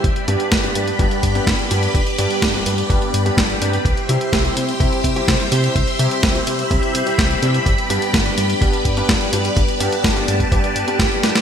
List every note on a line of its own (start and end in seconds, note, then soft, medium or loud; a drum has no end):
0.04 0.13 G1 loud
0.04 11.41 G4 medium
0.04 3.81 B4 medium
0.04 3.81 D5 medium
0.04 3.81 B5 medium
0.04 kick loud
0.04 closed hi-hat medium
0.16 closed hi-hat soft
0.28 0.61 G2 medium
0.28 0.36 G2 medium
0.28 0.61 G3 medium
0.28 0.61 B3 medium
0.28 0.61 D4 medium
0.28 0.61 G4 loud
0.28 closed hi-hat medium
0.40 closed hi-hat soft
0.52 0.69 G1 medium
0.52 kick loud
0.52 snare loud
0.52 closed hi-hat medium
0.64 0.97 G2 medium
0.64 0.97 G3 medium
0.64 0.97 B3 medium
0.64 0.97 D4 medium
0.64 0.97 G4 medium
0.64 closed hi-hat soft
0.75 0.92 G2 loud
0.75 closed hi-hat medium
0.88 closed hi-hat soft
0.99 1.08 G1 medium
0.99 1.32 G2 medium
0.99 1.32 G3 medium
0.99 1.32 B3 medium
0.99 1.32 D4 medium
0.99 1.32 G4 medium
0.99 kick loud
0.99 closed hi-hat medium
1.11 closed hi-hat soft
1.23 1.40 G2 medium
1.23 kick medium
1.23 closed hi-hat medium
1.35 1.68 G2 medium
1.35 1.68 G3 medium
1.35 1.68 B3 medium
1.35 1.68 D4 medium
1.35 1.68 G4 medium
1.35 closed hi-hat soft
1.47 1.55 G1 loud
1.47 kick loud
1.47 snare loud
1.47 closed hi-hat medium
1.59 closed hi-hat soft
1.71 1.88 G2 medium
1.71 1.97 G2 medium
1.71 1.97 G3 medium
1.71 1.97 B3 medium
1.71 1.97 D4 medium
1.71 1.97 G4 medium
1.71 closed hi-hat medium
1.83 closed hi-hat soft
1.94 2.03 G1 loud
1.94 kick loud
1.94 closed hi-hat medium
2.07 closed hi-hat soft
2.18 2.51 G2 medium
2.18 2.27 G2 medium
2.18 2.51 G3 medium
2.18 2.51 B3 medium
2.18 2.51 D4 medium
2.18 2.51 G4 loud
2.18 closed hi-hat medium
2.31 closed hi-hat soft
2.42 2.59 G1 medium
2.42 kick loud
2.42 snare loud
2.42 closed hi-hat medium
2.54 2.87 G2 medium
2.54 2.87 G3 medium
2.54 2.87 B3 medium
2.54 2.87 D4 medium
2.54 2.87 G4 medium
2.54 closed hi-hat soft
2.66 2.83 G2 loud
2.66 closed hi-hat medium
2.78 closed hi-hat soft
2.90 2.98 G1 medium
2.90 3.23 G2 medium
2.90 3.23 G3 medium
2.90 3.23 B3 medium
2.90 3.23 D4 medium
2.90 3.23 G4 medium
2.90 kick loud
2.90 closed hi-hat medium
3.02 closed hi-hat soft
3.14 3.30 G2 medium
3.14 closed hi-hat medium
3.26 3.58 G2 medium
3.26 3.58 G3 medium
3.26 3.58 B3 medium
3.26 3.58 D4 medium
3.26 3.58 G4 medium
3.26 closed hi-hat soft
3.37 3.54 G1 loud
3.37 kick loud
3.37 snare loud
3.37 closed hi-hat medium
3.50 closed hi-hat soft
3.61 3.78 G2 loud
3.61 3.77 C3 medium
3.61 3.77 G3 medium
3.61 3.77 B3 medium
3.61 3.77 D4 medium
3.61 3.77 G4 medium
3.61 closed hi-hat medium
3.73 closed hi-hat soft
3.85 3.93 C2 loud
3.85 7.62 C5 medium
3.85 7.62 E5 medium
3.85 5.74 C6 medium
3.85 kick loud
3.85 closed hi-hat medium
3.97 closed hi-hat soft
4.09 4.42 C3 medium
4.09 4.17 C3 medium
4.09 4.42 G3 medium
4.09 4.42 C4 medium
4.09 4.42 E4 medium
4.09 4.42 G4 loud
4.09 closed hi-hat medium
4.21 closed hi-hat soft
4.33 4.49 C2 medium
4.33 kick loud
4.33 snare loud
4.33 closed hi-hat medium
4.45 4.77 C3 medium
4.45 4.77 G3 medium
4.45 4.77 C4 medium
4.45 4.77 E4 medium
4.45 4.77 G4 medium
4.45 closed hi-hat soft
4.57 4.73 C3 loud
4.57 closed hi-hat medium
4.69 closed hi-hat soft
4.80 4.89 C2 medium
4.80 5.13 C3 medium
4.80 5.13 G3 medium
4.80 5.13 C4 medium
4.80 5.13 E4 medium
4.80 5.13 G4 medium
4.80 kick loud
4.80 closed hi-hat medium
4.93 closed hi-hat soft
5.04 5.21 C3 medium
5.04 kick medium
5.04 closed hi-hat medium
5.16 5.49 C3 medium
5.16 5.49 G3 medium
5.16 5.49 C4 medium
5.16 5.49 E4 medium
5.16 5.49 G4 medium
5.16 closed hi-hat soft
5.28 5.36 C2 loud
5.28 kick loud
5.28 snare loud
5.28 closed hi-hat medium
5.40 closed hi-hat soft
5.52 5.69 C3 medium
5.52 5.78 C3 medium
5.52 5.78 G3 medium
5.52 5.78 C4 medium
5.52 5.78 E4 medium
5.52 5.78 G4 loud
5.52 closed hi-hat medium
5.64 closed hi-hat soft
5.75 5.84 C2 loud
5.75 9.53 B5 medium
5.75 kick loud
5.75 closed hi-hat medium
5.88 closed hi-hat soft
5.99 6.32 C3 medium
5.99 6.08 C3 medium
5.99 6.32 G3 medium
5.99 6.32 C4 medium
5.99 6.32 E4 medium
5.99 6.32 G4 loud
5.99 closed hi-hat medium
6.11 closed hi-hat soft
6.23 6.40 C2 medium
6.23 kick loud
6.23 snare loud
6.23 closed hi-hat medium
6.35 6.68 C3 medium
6.35 6.68 G3 medium
6.35 6.68 C4 medium
6.35 6.68 E4 medium
6.35 6.68 G4 medium
6.35 closed hi-hat soft
6.47 6.64 C3 loud
6.47 closed hi-hat medium
6.59 closed hi-hat soft
6.71 6.79 C2 medium
6.71 7.04 C3 medium
6.71 7.04 G3 medium
6.71 7.04 C4 medium
6.71 7.04 E4 medium
6.71 7.04 G4 medium
6.71 kick loud
6.71 closed hi-hat medium
6.83 closed hi-hat soft
6.95 7.03 C3 medium
6.95 closed hi-hat medium
7.06 7.39 C3 medium
7.06 7.39 G3 medium
7.06 7.39 C4 medium
7.06 7.39 E4 medium
7.06 7.39 G4 medium
7.06 closed hi-hat soft
7.18 7.35 C2 loud
7.18 kick loud
7.18 snare loud
7.18 closed hi-hat medium
7.31 closed hi-hat soft
7.42 7.65 G2 medium
7.42 7.59 C3 medium
7.42 7.65 G3 medium
7.42 7.65 C4 medium
7.42 7.65 E4 medium
7.42 7.65 G4 medium
7.42 closed hi-hat medium
7.54 closed hi-hat soft
7.66 7.74 G1 medium
7.66 11.41 B4 medium
7.66 11.41 D5 medium
7.66 kick loud
7.66 closed hi-hat medium
7.78 closed hi-hat soft
7.90 8.23 G2 medium
7.90 7.98 G2 medium
7.90 8.23 G3 medium
7.90 8.23 B3 medium
7.90 8.23 D4 medium
7.90 8.23 G4 loud
7.90 closed hi-hat medium
8.02 closed hi-hat soft
8.14 8.30 G1 medium
8.14 kick loud
8.14 snare loud
8.14 closed hi-hat medium
8.26 8.58 G2 medium
8.26 8.58 G3 medium
8.26 8.58 B3 medium
8.26 8.58 D4 medium
8.26 8.58 G4 medium
8.26 closed hi-hat soft
8.38 8.54 G2 loud
8.38 closed hi-hat medium
8.50 closed hi-hat soft
8.61 8.70 G1 medium
8.61 8.94 G2 medium
8.61 8.94 G3 medium
8.61 8.94 B3 medium
8.61 8.94 D4 medium
8.61 8.94 G4 medium
8.61 kick loud
8.61 closed hi-hat medium
8.73 closed hi-hat soft
8.85 9.02 G2 medium
8.85 kick medium
8.85 closed hi-hat medium
8.97 9.30 G2 medium
8.97 9.30 G3 medium
8.97 9.30 B3 medium
8.97 9.30 D4 medium
8.97 9.30 G4 medium
8.97 closed hi-hat soft
9.09 9.17 G1 loud
9.09 kick loud
9.09 snare loud
9.09 closed hi-hat medium
9.21 closed hi-hat soft
9.33 9.50 G2 medium
9.33 9.59 G2 medium
9.33 9.59 G3 medium
9.33 9.59 B3 medium
9.33 9.59 D4 medium
9.33 9.59 G4 loud
9.33 closed hi-hat loud
9.45 closed hi-hat soft
9.56 9.65 G1 medium
9.56 11.41 A5 medium
9.56 kick loud
9.56 closed hi-hat medium
9.68 closed hi-hat soft
9.80 9.89 G2 medium
9.80 10.13 G2 medium
9.80 10.13 G3 medium
9.80 10.13 B3 medium
9.80 10.13 D4 medium
9.80 10.13 G4 loud
9.80 closed hi-hat medium
9.93 closed hi-hat soft
10.04 10.21 G1 medium
10.04 kick loud
10.04 snare loud
10.04 closed hi-hat medium
10.16 10.49 G2 medium
10.16 10.49 G3 medium
10.16 10.49 B3 medium
10.16 10.49 D4 medium
10.16 10.49 G4 medium
10.16 closed hi-hat soft
10.28 10.45 G2 loud
10.28 closed hi-hat loud
10.40 kick medium
10.40 closed hi-hat soft
10.52 10.60 G1 medium
10.52 10.85 G2 medium
10.52 10.85 G3 medium
10.52 10.85 B3 medium
10.52 10.85 D4 medium
10.52 10.85 G4 medium
10.52 kick loud
10.52 closed hi-hat medium
10.64 closed hi-hat soft
10.76 10.84 G2 loud
10.76 closed hi-hat medium
10.87 11.20 G2 medium
10.87 11.20 G3 medium
10.87 11.20 B3 medium
10.87 11.20 D4 medium
10.87 11.20 G4 loud
10.87 closed hi-hat soft
10.99 11.08 G1 loud
10.99 kick loud
10.99 snare loud
10.99 closed hi-hat medium
11.12 closed hi-hat soft
11.23 11.32 G2 medium
11.23 11.39 G3 medium
11.23 11.39 B3 medium
11.23 11.39 D4 medium
11.23 11.39 G4 medium
11.23 snare medium
11.23 closed hi-hat loud
11.35 snare loud
11.35 closed hi-hat soft